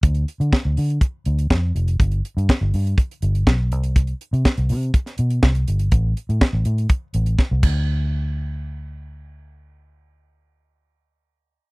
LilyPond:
<<
  \new Staff \with { instrumentName = "Fingered electric bass" } { \clef bass \time 4/4 \key d \dorian \tempo 4 = 122 d,8 r16 d16 r16 d,16 d8 r8 d,8 f,8 f,,8 | g,,8 r16 g,16 r16 g,,16 g,8 r8 g,,8 b,,8 c,8~ | c,8 r16 c16 r16 c,16 c8 r8 b,8 c,8 g,,8 | a,,8 r16 a,16 r16 a,,16 a,8 r8 a,,8 r16 c,16 d,8~ |
d,1~ | d,1 | }
  \new DrumStaff \with { instrumentName = "Drums" } \drummode { \time 4/4 <hh bd>16 hh16 hh16 hh16 <bd sn>8 hho16 hh16 <hh bd>8 hh16 hh16 <bd sn>8 hh16 hh16 | <hh bd>16 hh16 hh16 hh16 <bd sn>8 hho16 hh16 <hh bd>16 hh16 hh16 hh16 <bd sn>8 hh16 hh16 | <hh bd>16 hh16 hh16 hh16 <bd sn>16 hh16 hho16 hh16 <hh bd>16 <hh sn>16 hh16 hh16 <bd sn>16 hh16 hh16 hh16 | <hh bd>8 hh16 hh16 <bd sn>8 hh16 hh16 <hh bd>8 hh16 hh16 <bd sn>8 <cymc bd>8 |
r4 r4 r4 r4 | r4 r4 r4 r4 | }
>>